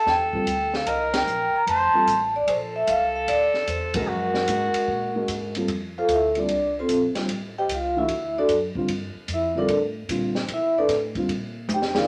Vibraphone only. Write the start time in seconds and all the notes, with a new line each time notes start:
0.09 G5
0.76 F5
0.88 D#5
1.16 G5
1.56 A#5
1.69 A5
2.36 D5
2.49 C5
2.76 E5
2.90 F5
3.16 F5
3.29 D5
3.70 C5
3.96 A#4
5.98 F4 A4 C5 F5
6.13 E4 A4 C5 E5
6.39 D4 D5
6.79 C4 F4 A4 C5
7.58 G4 C5 D#5 G5
7.74 F4 F5
7.98 E4 E5
8.38 D4 F#4 A4 D5
9.34 E4 E5
9.58 D4 A4 A#4 D5
10.54 E4 E5
10.78 D4 A4 B4 D5
11.74 G4 G5
11.98 F4 A#4 D5 F5